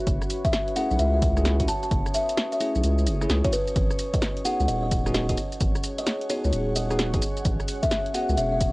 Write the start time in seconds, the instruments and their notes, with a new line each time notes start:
Already playing: analog synth pad C#4 C#5, ambient pad F#4 B4 E5
0.07 sub bass F#1, kick, closed hi-hat, shaker
0.21 cross-stick, shaker
0.30 open hi-hat, shaker
0.45 kalimba E5, kick, closed hi-hat, shaker
0.53 snare, closed hi-hat, shaker
0.64 ambient pad D#6, closed hi-hat
0.76 tine electric piano A3 C#4 E4 G#4, kalimba F#5, open hi-hat, shaker
0.91 sub bass B1, kalimba F#5, shaker
0.99 sub bass C#2, kalimba E5, closed hi-hat, shaker
1.14 kalimba E5
1.22 kick, open hi-hat, shaker
1.37 tine electric piano A3 C#4 E4 G#4, cross-stick, shaker
1.45 snare, closed hi-hat, shaker
1.60 tine electric piano A3 C#4 E4 F#4, kick, closed hi-hat, shaker
1.68 kalimba A5, open hi-hat, shaker
1.83 kalimba A5, closed hi-hat, shaker
1.91 sub bass F#1, kick, closed hi-hat, shaker
2.06 cross-stick, shaker
2.14 kalimba E5, open hi-hat, shaker
2.29 closed hi-hat, shaker
2.37 snare, closed hi-hat, shaker
2.52 kalimba E5, closed hi-hat, shaker
2.60 tine electric piano A3 C#4 E4 G#4, open hi-hat, shaker
2.75 sub bass B1, shaker
2.84 sub bass C#2, closed hi-hat, shaker
2.98 shaker
3.07 sub bass F#1, open hi-hat, shaker
3.21 tine electric piano A3 C#4 E4 G#4, cross-stick, shaker
3.30 sub bass C#2, snare, closed hi-hat, shaker
3.45 tine electric piano A3 C#4 E4 F#4, kalimba C#5, kick, closed hi-hat, shaker
3.53 kalimba B4, open hi-hat, shaker
3.68 closed hi-hat, shaker
3.76 sub bass G#1, ambient pad G#4, kick, closed hi-hat, shaker
3.91 cross-stick, shaker
3.99 open hi-hat, shaker
4.14 ambient pad C#5, kalimba D#5, kick, closed hi-hat, shaker
4.22 snare, closed hi-hat, shaker
4.37 closed hi-hat
4.45 tine electric piano B3 D#4 F#4 G#4, kalimba F#5, ambient pad F#5, open hi-hat, shaker
4.60 sub bass C#2, kalimba F#5, shaker
4.68 sub bass D#1, kalimba D#5, closed hi-hat, shaker
4.83 kalimba D#5
4.91 kick, open hi-hat, shaker
5.06 tine electric piano B3 D#4 F#4 G#4, cross-stick, shaker
5.14 kalimba D#5, snare, closed hi-hat, shaker
5.29 tine electric piano B3 D#4 F#4 G#4, kalimba D#5, kick, closed hi-hat, shaker
5.37 open hi-hat, shaker
5.52 closed hi-hat, shaker
5.60 sub bass G#1, kick, closed hi-hat, shaker
5.75 cross-stick, shaker
5.84 open hi-hat, shaker
5.98 kalimba D#5, closed hi-hat, shaker
6.07 snare, closed hi-hat, shaker
6.21 closed hi-hat
6.30 tine electric piano B3 D#4 F#4 G#4, kalimba C#5, open hi-hat, shaker
6.44 sub bass C#2, kalimba C#5, shaker
6.53 sub bass D#1, closed hi-hat, shaker
6.76 kalimba D#5, open hi-hat, shaker
6.91 tine electric piano B3 D#4 F#4 G#4, cross-stick, shaker
6.99 snare, closed hi-hat, shaker
7.14 tine electric piano B3 D#4 F#4 G#4, kick, closed hi-hat, shaker
7.22 open hi-hat, shaker
7.37 closed hi-hat, shaker
7.45 sub bass A1, kick, closed hi-hat, shaker
7.60 cross-stick, shaker
7.68 open hi-hat, shaker
7.83 kalimba E5, kick, closed hi-hat, shaker
7.91 snare, closed hi-hat, shaker
8.06 closed hi-hat
8.14 tine electric piano B3 C#4 F#4 G#4, kalimba F#5, open hi-hat, shaker
8.29 sub bass C#2, kalimba F#5, shaker
8.37 sub bass E1, kalimba E5, closed hi-hat, shaker
8.52 kalimba E5
8.60 kick, open hi-hat, shaker